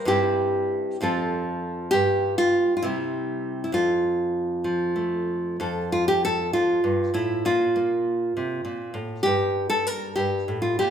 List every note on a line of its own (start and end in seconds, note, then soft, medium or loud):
0.05 0.96 G2 medium
0.05 0.96 G3 soft
0.05 0.97 C4 soft
0.05 0.97 E4 soft
0.05 1.00 G4 medium
1.01 1.93 F2 medium
1.01 1.90 F3 medium
1.01 1.90 C4 medium
1.01 1.90 F4 medium
1.01 1.90 A4 medium
1.91 2.80 G2 medium
1.91 2.37 G4 loud
2.38 2.75 F4 loud
2.77 2.83 F4 medium
2.82 3.70 C3 medium
2.82 3.70 G3 soft
2.82 4.95 C4 soft
2.82 3.63 E4 medium
3.64 3.72 E4 medium
3.72 5.59 F2 medium
3.72 5.60 F4 medium
4.64 5.56 F3 medium
4.96 5.56 A3 soft
5.60 6.53 F2 medium
5.60 5.92 A4 soft
5.92 6.08 F4 medium
6.08 6.23 G4 medium
6.25 6.53 A4 loud
6.53 6.83 F2 medium
6.53 7.44 F4 medium
6.84 7.13 G2 medium
7.14 7.45 A2 medium
7.14 7.45 E4 medium
7.45 8.35 A#2 medium
7.45 9.22 F4 medium
7.76 9.22 A#3 soft
8.37 8.64 C3 medium
8.65 8.95 A#2 medium
8.94 9.25 A2 medium
9.23 10.16 G2 medium
9.23 9.69 G4 loud
9.70 9.87 A4 loud
9.87 10.15 A#4 loud
10.16 10.48 G2 medium
10.16 10.61 G4 medium
10.48 10.79 A2 medium
10.62 10.78 F4 medium
10.79 10.90 A#2 medium
10.79 10.90 G4 medium